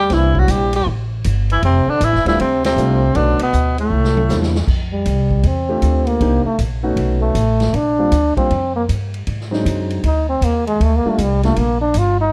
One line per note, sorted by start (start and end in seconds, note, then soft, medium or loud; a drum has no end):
0.00 0.14 G3 medium
0.00 0.15 G4 medium
0.10 0.47 C2 medium
0.10 0.39 E3 medium
0.10 0.68 G3 medium
0.10 0.68 A#3 medium
0.10 0.68 C4 medium
0.10 0.68 D4 medium
0.10 0.68 E4 medium
0.10 0.41 E4 medium
0.10 kick soft
0.10 snare soft
0.10 ride medium
0.35 0.52 F#3 medium
0.35 kick medium
0.39 0.53 F#4 medium
0.48 0.85 A#1 medium
0.48 0.74 G3 medium
0.48 0.74 G4 medium
0.48 hi-hat pedal medium
0.48 ride medium
0.73 0.86 G3 medium
0.73 0.87 G4 medium
0.73 ride medium
0.86 1.23 A1 medium
0.86 kick soft
1.24 1.61 G1 medium
1.24 kick soft
1.24 hi-hat pedal soft
1.24 ride medium
1.50 1.63 E3 medium
1.50 1.63 E4 medium
1.50 ride soft
1.63 1.85 F1 medium
1.63 1.91 C3 medium
1.63 1.92 C4 medium
1.63 kick soft
1.63 ride medium
1.87 2.05 D3 medium
1.87 2.06 D4 medium
1.87 muted upright bass stroke soft
2.01 2.15 A1 medium
2.01 2.27 E3 medium
2.01 2.27 E4 loud
2.01 kick soft
2.01 hi-hat pedal medium
2.01 ride medium
2.13 2.25 F1 medium
2.13 snare soft
2.25 2.37 D1 medium
2.25 2.39 E3 medium
2.25 2.37 G3 medium
2.25 2.38 A3 medium
2.25 2.38 C4 medium
2.25 2.38 D4 medium
2.25 2.39 E4 medium
2.25 2.38 F4 medium
2.25 snare soft
2.25 ride soft
2.39 2.76 D2 medium
2.39 2.63 C3 medium
2.39 2.63 C4 medium
2.39 kick soft
2.39 ride medium
2.64 3.16 C3 medium
2.64 3.18 C4 medium
2.64 snare medium
2.64 ride medium
2.76 3.13 C2 medium
2.76 2.99 G3 medium
2.76 2.99 A3 medium
2.76 2.99 C4 medium
2.76 3.00 D4 medium
2.76 3.00 F4 medium
2.76 hi-hat pedal soft
3.14 3.38 B1 medium
3.14 3.40 D3 medium
3.14 3.37 A3 medium
3.14 3.37 B3 medium
3.14 3.37 C#4 medium
3.14 3.37 D4 medium
3.14 3.40 D4 medium
3.14 3.37 F#4 medium
3.14 kick soft
3.14 ride medium
3.39 3.75 B2 medium
3.39 3.77 B3 medium
3.39 muted upright bass stroke soft
3.39 ride medium
3.53 3.90 D2 medium
3.53 kick soft
3.53 hi-hat pedal medium
3.78 4.50 A2 medium
3.78 4.51 A3 medium
3.78 ride soft
3.90 4.28 C2 medium
4.04 snare medium
4.17 high tom medium
4.29 4.66 E2 medium
4.29 4.52 G3 medium
4.29 4.52 A#3 medium
4.29 4.52 D4 medium
4.29 4.52 E4 medium
4.29 4.52 C5 medium
4.29 snare medium
4.29 hi-hat pedal medium
4.43 snare medium
4.55 snare medium
4.68 5.04 F2 medium
4.68 kick medium
4.68 crash medium
4.93 5.48 G3 medium
5.05 5.43 C2 medium
5.05 kick soft
5.05 hi-hat pedal medium
5.05 ride medium
5.31 kick soft
5.43 5.81 E2 medium
5.43 6.09 C4 medium
5.43 kick soft
5.43 ride medium
5.69 6.18 A3 medium
5.69 6.18 C4 medium
5.69 6.18 D4 medium
5.69 6.18 F4 medium
5.69 6.18 G4 medium
5.82 6.19 D2 medium
5.82 kick soft
5.82 hi-hat pedal soft
5.82 ride medium
6.07 6.45 A#3 medium
6.07 ride soft
6.20 6.44 C2 medium
6.20 6.43 A#3 medium
6.20 6.43 C4 medium
6.20 6.43 D4 medium
6.20 6.43 D#4 medium
6.20 6.43 G4 medium
6.20 kick soft
6.20 ride medium
6.45 6.58 A3 medium
6.45 muted upright bass stroke soft
6.59 6.96 A#1 medium
6.59 kick soft
6.59 hi-hat pedal soft
6.59 ride medium
6.83 7.32 A3 medium
6.83 7.32 B3 medium
6.83 7.32 C#4 medium
6.83 7.32 D#4 medium
6.83 7.33 F#4 medium
6.96 7.34 B1 medium
6.96 kick soft
6.96 ride medium
7.22 7.77 A3 medium
7.35 7.72 A1 medium
7.35 kick soft
7.35 hi-hat pedal medium
7.35 ride medium
7.60 snare medium
7.60 ride soft
7.73 8.10 A#1 medium
7.73 8.37 D4 medium
7.73 kick soft
7.73 ride medium
7.99 8.10 G3 medium
7.99 8.11 A#3 medium
7.99 8.11 C4 medium
7.99 8.11 D4 medium
7.99 8.11 F4 medium
8.12 8.35 D2 medium
8.12 kick soft
8.12 hi-hat pedal medium
8.12 ride medium
8.37 8.49 G3 medium
8.37 8.49 A#3 medium
8.37 8.49 C4 medium
8.37 8.73 C4 medium
8.37 8.49 D4 medium
8.37 8.49 F4 medium
8.37 muted upright bass stroke soft
8.37 kick soft
8.37 ride soft
8.50 8.87 F2 medium
8.50 kick soft
8.50 ride medium
8.76 8.84 A#3 medium
8.89 9.26 G2 medium
8.89 kick soft
8.89 hi-hat pedal medium
8.89 ride medium
9.14 ride soft
9.27 9.64 G#2 medium
9.27 kick soft
9.27 ride medium
9.41 snare soft
9.51 10.00 F#3 medium
9.51 10.00 G#3 medium
9.51 10.01 C4 medium
9.51 10.01 D4 medium
9.51 10.01 D#4 medium
9.51 snare soft
9.65 10.02 F#2 medium
9.65 kick soft
9.65 hi-hat pedal medium
9.65 ride medium
9.90 ride soft
10.04 10.41 D2 medium
10.04 10.28 D#4 medium
10.04 kick soft
10.04 ride medium
10.29 10.46 C4 medium
10.41 10.79 D#2 medium
10.41 10.66 A#3 medium
10.41 kick soft
10.41 hi-hat pedal medium
10.41 ride medium
10.67 10.85 G#3 medium
10.67 ride soft
10.80 11.03 D2 medium
10.80 10.98 A3 medium
10.80 kick soft
10.80 ride medium
10.96 11.10 A#3 medium
11.05 11.17 G3 medium
11.05 11.17 A3 medium
11.05 11.22 A3 medium
11.05 11.17 A#3 medium
11.05 11.17 D4 medium
11.05 11.18 F4 medium
11.05 muted upright bass stroke soft
11.18 11.55 C2 medium
11.18 11.44 G3 medium
11.18 kick soft
11.18 hi-hat pedal medium
11.18 ride medium
11.43 11.55 G3 medium
11.43 11.55 A3 medium
11.43 11.60 A3 medium
11.43 11.56 A#3 medium
11.43 11.56 D4 medium
11.43 11.56 F4 medium
11.43 snare soft
11.43 ride soft
11.56 11.94 A#1 medium
11.56 11.80 A#3 medium
11.56 kick soft
11.56 ride medium
11.81 12.00 D4 medium
11.94 12.32 G1 medium
11.94 kick soft
11.94 hi-hat pedal medium
11.94 ride medium
11.98 12.20 F4 medium
12.21 12.32 D#4 loud